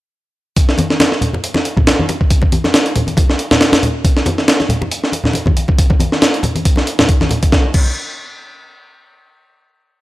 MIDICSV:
0, 0, Header, 1, 2, 480
1, 0, Start_track
1, 0, Tempo, 434783
1, 627, Time_signature, 4, 2, 24, 8
1, 11053, End_track
2, 0, Start_track
2, 0, Title_t, "Drums"
2, 624, Note_on_c, 9, 42, 87
2, 625, Note_on_c, 9, 36, 107
2, 734, Note_off_c, 9, 42, 0
2, 736, Note_off_c, 9, 36, 0
2, 759, Note_on_c, 9, 38, 47
2, 858, Note_on_c, 9, 62, 54
2, 867, Note_on_c, 9, 42, 67
2, 870, Note_off_c, 9, 38, 0
2, 871, Note_on_c, 9, 63, 94
2, 969, Note_off_c, 9, 62, 0
2, 978, Note_off_c, 9, 42, 0
2, 981, Note_off_c, 9, 63, 0
2, 998, Note_on_c, 9, 38, 47
2, 1103, Note_on_c, 9, 62, 86
2, 1106, Note_off_c, 9, 38, 0
2, 1106, Note_on_c, 9, 38, 121
2, 1106, Note_on_c, 9, 42, 96
2, 1213, Note_off_c, 9, 62, 0
2, 1216, Note_off_c, 9, 38, 0
2, 1216, Note_off_c, 9, 42, 0
2, 1238, Note_on_c, 9, 38, 48
2, 1340, Note_on_c, 9, 64, 81
2, 1346, Note_on_c, 9, 42, 67
2, 1349, Note_off_c, 9, 38, 0
2, 1451, Note_off_c, 9, 64, 0
2, 1457, Note_off_c, 9, 42, 0
2, 1472, Note_on_c, 9, 63, 63
2, 1483, Note_on_c, 9, 62, 57
2, 1583, Note_off_c, 9, 63, 0
2, 1587, Note_on_c, 9, 42, 83
2, 1593, Note_off_c, 9, 62, 0
2, 1697, Note_off_c, 9, 42, 0
2, 1705, Note_on_c, 9, 62, 78
2, 1720, Note_on_c, 9, 38, 40
2, 1815, Note_off_c, 9, 62, 0
2, 1824, Note_on_c, 9, 42, 66
2, 1830, Note_off_c, 9, 38, 0
2, 1934, Note_off_c, 9, 42, 0
2, 1951, Note_on_c, 9, 64, 85
2, 1958, Note_on_c, 9, 36, 99
2, 2061, Note_off_c, 9, 64, 0
2, 2066, Note_on_c, 9, 38, 115
2, 2066, Note_on_c, 9, 42, 93
2, 2068, Note_off_c, 9, 36, 0
2, 2070, Note_on_c, 9, 62, 51
2, 2177, Note_off_c, 9, 38, 0
2, 2177, Note_off_c, 9, 42, 0
2, 2181, Note_off_c, 9, 62, 0
2, 2203, Note_on_c, 9, 63, 95
2, 2305, Note_on_c, 9, 42, 72
2, 2310, Note_on_c, 9, 62, 78
2, 2313, Note_off_c, 9, 63, 0
2, 2416, Note_off_c, 9, 42, 0
2, 2420, Note_off_c, 9, 62, 0
2, 2438, Note_on_c, 9, 36, 91
2, 2544, Note_on_c, 9, 42, 90
2, 2546, Note_off_c, 9, 36, 0
2, 2546, Note_on_c, 9, 36, 110
2, 2655, Note_off_c, 9, 42, 0
2, 2656, Note_off_c, 9, 36, 0
2, 2668, Note_on_c, 9, 62, 56
2, 2678, Note_on_c, 9, 36, 99
2, 2778, Note_off_c, 9, 62, 0
2, 2784, Note_on_c, 9, 42, 68
2, 2788, Note_off_c, 9, 36, 0
2, 2788, Note_on_c, 9, 63, 89
2, 2894, Note_off_c, 9, 42, 0
2, 2898, Note_off_c, 9, 63, 0
2, 2918, Note_on_c, 9, 38, 41
2, 2923, Note_on_c, 9, 62, 78
2, 3025, Note_off_c, 9, 38, 0
2, 3025, Note_on_c, 9, 38, 121
2, 3025, Note_on_c, 9, 42, 92
2, 3033, Note_off_c, 9, 62, 0
2, 3135, Note_off_c, 9, 38, 0
2, 3135, Note_off_c, 9, 42, 0
2, 3156, Note_on_c, 9, 42, 47
2, 3262, Note_on_c, 9, 62, 55
2, 3263, Note_off_c, 9, 42, 0
2, 3263, Note_on_c, 9, 42, 69
2, 3267, Note_on_c, 9, 64, 94
2, 3372, Note_off_c, 9, 62, 0
2, 3373, Note_off_c, 9, 42, 0
2, 3377, Note_off_c, 9, 64, 0
2, 3389, Note_on_c, 9, 63, 72
2, 3398, Note_on_c, 9, 42, 46
2, 3499, Note_on_c, 9, 62, 86
2, 3500, Note_off_c, 9, 63, 0
2, 3506, Note_off_c, 9, 42, 0
2, 3506, Note_on_c, 9, 36, 114
2, 3506, Note_on_c, 9, 42, 88
2, 3609, Note_off_c, 9, 62, 0
2, 3616, Note_off_c, 9, 36, 0
2, 3616, Note_off_c, 9, 42, 0
2, 3639, Note_on_c, 9, 38, 42
2, 3743, Note_on_c, 9, 42, 71
2, 3749, Note_off_c, 9, 38, 0
2, 3854, Note_off_c, 9, 42, 0
2, 3877, Note_on_c, 9, 38, 122
2, 3877, Note_on_c, 9, 62, 49
2, 3877, Note_on_c, 9, 64, 85
2, 3983, Note_off_c, 9, 38, 0
2, 3983, Note_on_c, 9, 38, 105
2, 3983, Note_on_c, 9, 42, 78
2, 3988, Note_off_c, 9, 62, 0
2, 3988, Note_off_c, 9, 64, 0
2, 4094, Note_off_c, 9, 38, 0
2, 4094, Note_off_c, 9, 42, 0
2, 4112, Note_on_c, 9, 63, 88
2, 4117, Note_on_c, 9, 62, 84
2, 4118, Note_on_c, 9, 38, 112
2, 4118, Note_on_c, 9, 42, 82
2, 4223, Note_off_c, 9, 63, 0
2, 4227, Note_off_c, 9, 62, 0
2, 4227, Note_on_c, 9, 64, 93
2, 4228, Note_off_c, 9, 38, 0
2, 4228, Note_off_c, 9, 42, 0
2, 4229, Note_on_c, 9, 42, 73
2, 4337, Note_off_c, 9, 64, 0
2, 4339, Note_off_c, 9, 42, 0
2, 4466, Note_on_c, 9, 62, 54
2, 4467, Note_on_c, 9, 36, 107
2, 4467, Note_on_c, 9, 42, 92
2, 4577, Note_off_c, 9, 36, 0
2, 4577, Note_off_c, 9, 42, 0
2, 4577, Note_off_c, 9, 62, 0
2, 4599, Note_on_c, 9, 38, 50
2, 4700, Note_on_c, 9, 62, 75
2, 4705, Note_on_c, 9, 42, 66
2, 4710, Note_off_c, 9, 38, 0
2, 4710, Note_on_c, 9, 63, 110
2, 4811, Note_off_c, 9, 62, 0
2, 4815, Note_off_c, 9, 42, 0
2, 4821, Note_off_c, 9, 63, 0
2, 4839, Note_on_c, 9, 38, 47
2, 4947, Note_off_c, 9, 38, 0
2, 4947, Note_on_c, 9, 38, 121
2, 4947, Note_on_c, 9, 42, 96
2, 5057, Note_off_c, 9, 38, 0
2, 5057, Note_off_c, 9, 42, 0
2, 5078, Note_on_c, 9, 38, 48
2, 5083, Note_on_c, 9, 62, 50
2, 5179, Note_on_c, 9, 64, 94
2, 5187, Note_on_c, 9, 42, 72
2, 5188, Note_off_c, 9, 38, 0
2, 5193, Note_off_c, 9, 62, 0
2, 5289, Note_off_c, 9, 64, 0
2, 5297, Note_off_c, 9, 42, 0
2, 5315, Note_on_c, 9, 63, 70
2, 5318, Note_on_c, 9, 62, 80
2, 5425, Note_off_c, 9, 63, 0
2, 5426, Note_on_c, 9, 42, 93
2, 5428, Note_off_c, 9, 62, 0
2, 5537, Note_off_c, 9, 42, 0
2, 5560, Note_on_c, 9, 38, 42
2, 5657, Note_on_c, 9, 62, 46
2, 5667, Note_on_c, 9, 42, 80
2, 5670, Note_off_c, 9, 38, 0
2, 5768, Note_off_c, 9, 62, 0
2, 5777, Note_off_c, 9, 42, 0
2, 5782, Note_on_c, 9, 64, 84
2, 5800, Note_on_c, 9, 38, 38
2, 5889, Note_on_c, 9, 62, 75
2, 5892, Note_off_c, 9, 64, 0
2, 5907, Note_on_c, 9, 42, 63
2, 5910, Note_off_c, 9, 38, 0
2, 5999, Note_off_c, 9, 62, 0
2, 6018, Note_off_c, 9, 42, 0
2, 6026, Note_on_c, 9, 63, 105
2, 6039, Note_on_c, 9, 36, 86
2, 6136, Note_off_c, 9, 63, 0
2, 6147, Note_on_c, 9, 42, 73
2, 6149, Note_off_c, 9, 36, 0
2, 6257, Note_off_c, 9, 42, 0
2, 6271, Note_on_c, 9, 62, 50
2, 6280, Note_on_c, 9, 36, 95
2, 6382, Note_off_c, 9, 62, 0
2, 6387, Note_off_c, 9, 36, 0
2, 6387, Note_on_c, 9, 36, 108
2, 6387, Note_on_c, 9, 42, 90
2, 6497, Note_off_c, 9, 36, 0
2, 6497, Note_off_c, 9, 42, 0
2, 6512, Note_on_c, 9, 62, 74
2, 6519, Note_on_c, 9, 36, 94
2, 6619, Note_on_c, 9, 63, 91
2, 6623, Note_off_c, 9, 62, 0
2, 6628, Note_on_c, 9, 42, 67
2, 6630, Note_off_c, 9, 36, 0
2, 6730, Note_off_c, 9, 63, 0
2, 6739, Note_off_c, 9, 42, 0
2, 6760, Note_on_c, 9, 38, 41
2, 6863, Note_on_c, 9, 62, 49
2, 6867, Note_off_c, 9, 38, 0
2, 6867, Note_on_c, 9, 38, 122
2, 6867, Note_on_c, 9, 42, 95
2, 6973, Note_off_c, 9, 62, 0
2, 6977, Note_off_c, 9, 38, 0
2, 6977, Note_off_c, 9, 42, 0
2, 7000, Note_on_c, 9, 42, 45
2, 7099, Note_on_c, 9, 62, 76
2, 7100, Note_on_c, 9, 64, 81
2, 7107, Note_off_c, 9, 42, 0
2, 7107, Note_on_c, 9, 42, 74
2, 7209, Note_off_c, 9, 62, 0
2, 7211, Note_off_c, 9, 64, 0
2, 7217, Note_off_c, 9, 42, 0
2, 7237, Note_on_c, 9, 63, 70
2, 7238, Note_on_c, 9, 42, 48
2, 7345, Note_off_c, 9, 42, 0
2, 7345, Note_on_c, 9, 42, 87
2, 7347, Note_off_c, 9, 63, 0
2, 7347, Note_on_c, 9, 36, 113
2, 7456, Note_off_c, 9, 42, 0
2, 7458, Note_off_c, 9, 36, 0
2, 7461, Note_on_c, 9, 62, 48
2, 7478, Note_on_c, 9, 38, 42
2, 7571, Note_off_c, 9, 62, 0
2, 7586, Note_on_c, 9, 42, 70
2, 7589, Note_off_c, 9, 38, 0
2, 7696, Note_off_c, 9, 42, 0
2, 7717, Note_on_c, 9, 38, 120
2, 7717, Note_on_c, 9, 62, 74
2, 7724, Note_on_c, 9, 64, 73
2, 7824, Note_on_c, 9, 42, 79
2, 7827, Note_off_c, 9, 38, 0
2, 7828, Note_off_c, 9, 62, 0
2, 7828, Note_on_c, 9, 36, 103
2, 7835, Note_off_c, 9, 64, 0
2, 7934, Note_off_c, 9, 42, 0
2, 7938, Note_off_c, 9, 36, 0
2, 7959, Note_on_c, 9, 63, 101
2, 7960, Note_on_c, 9, 38, 43
2, 8051, Note_on_c, 9, 62, 52
2, 8067, Note_on_c, 9, 42, 66
2, 8068, Note_on_c, 9, 64, 86
2, 8070, Note_off_c, 9, 63, 0
2, 8071, Note_off_c, 9, 38, 0
2, 8162, Note_off_c, 9, 62, 0
2, 8177, Note_off_c, 9, 42, 0
2, 8178, Note_off_c, 9, 64, 0
2, 8199, Note_on_c, 9, 42, 77
2, 8201, Note_on_c, 9, 36, 97
2, 8306, Note_on_c, 9, 38, 84
2, 8308, Note_off_c, 9, 36, 0
2, 8308, Note_on_c, 9, 36, 114
2, 8309, Note_off_c, 9, 42, 0
2, 8417, Note_off_c, 9, 38, 0
2, 8419, Note_off_c, 9, 36, 0
2, 8546, Note_on_c, 9, 49, 84
2, 8549, Note_on_c, 9, 36, 111
2, 8656, Note_off_c, 9, 49, 0
2, 8659, Note_off_c, 9, 36, 0
2, 11053, End_track
0, 0, End_of_file